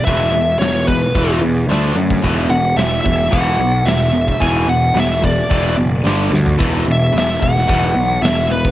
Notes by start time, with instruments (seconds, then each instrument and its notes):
0.05 picked electric bass E1, overdriven electric guitar E2 B2 E3, lead electric guitar E5, kick, open hi-hat
0.32 picked electric bass E1, overdriven electric guitar E2 B2, open hi-hat
0.59 picked electric bass E1, overdriven electric guitar E2 B2, lead electric guitar C#5, snare, open hi-hat
0.87 overdriven electric guitar E2 B2, lead electric guitar B4, kick, open hi-hat
1.15 picked electric bass E1, overdriven electric guitar E2 B2 E3, kick, open hi-hat
1.40 picked electric bass E2, overdriven electric guitar E2 B2, open hi-hat
1.68 picked electric bass D2, overdriven electric guitar D3 A3 D4, open hi-hat
1.72 snare
1.95 picked electric bass F#2, overdriven electric guitar D3 A3, open hi-hat
2.10 kick
2.22 picked electric bass E1, overdriven electric guitar E2 B2 E3, kick, open hi-hat
2.49 picked electric bass E1, overdriven electric guitar E2 B2, lead electric guitar F#5, open hi-hat
2.76 picked electric bass E1, overdriven electric guitar E2 B2, lead electric guitar E5, snare, open hi-hat
3.01 overdriven electric guitar E2 B2, lead electric guitar E5
3.05 picked electric bass E1, kick, open hi-hat
3.30 picked electric bass E1, overdriven electric guitar E2 B2 E3, lead electric guitar F#5, kick, open hi-hat
3.58 picked electric bass B1, overdriven electric guitar E2 B2, open hi-hat
3.85 picked electric bass E1, overdriven electric guitar E2 B2, lead electric guitar E5, snare, open hi-hat
4.12 overdriven electric guitar E2 B2, open hi-hat
4.28 kick
4.40 picked electric bass E1, overdriven electric guitar E2 B2 E3, lead electric guitar G#5, kick, open hi-hat
4.67 picked electric bass E1, overdriven electric guitar E2 B2, lead electric guitar F#5, open hi-hat
4.94 picked electric bass E1, overdriven electric guitar E2 B2, snare, open hi-hat
4.99 lead electric guitar E5
5.22 overdriven electric guitar E2 B2, lead electric guitar D5, kick, open hi-hat
5.49 picked electric bass E1, overdriven electric guitar E2 B2 E3, kick, open hi-hat
5.76 picked electric bass F#1, overdriven electric guitar E2 B2, open hi-hat
6.04 picked electric bass G1, overdriven electric guitar G2 D3 G3, snare, open hi-hat
6.30 picked electric bass D2, overdriven electric guitar G2 D3, snare
6.46 floor tom
6.58 picked electric bass E1, overdriven electric guitar E2 B2 E3, kick, open hi-hat
6.86 picked electric bass E1, overdriven electric guitar E2 B2, open hi-hat
6.92 lead electric guitar E5
7.13 picked electric bass E1, overdriven electric guitar E2 B2
7.17 lead electric guitar E5, snare, open hi-hat
7.39 picked electric bass E1, overdriven electric guitar E2 B2, lead electric guitar F#5, kick
7.43 open hi-hat
7.58 snare
7.67 picked electric bass E1, overdriven electric guitar E2 B2 E3, kick, open hi-hat
7.94 picked electric bass B1, overdriven electric guitar E2 B2, open hi-hat
8.22 picked electric bass E1, overdriven electric guitar E2 B2, lead electric guitar E5, snare, open hi-hat
8.50 overdriven electric guitar E2 B2, lead electric guitar B4, open hi-hat
8.65 kick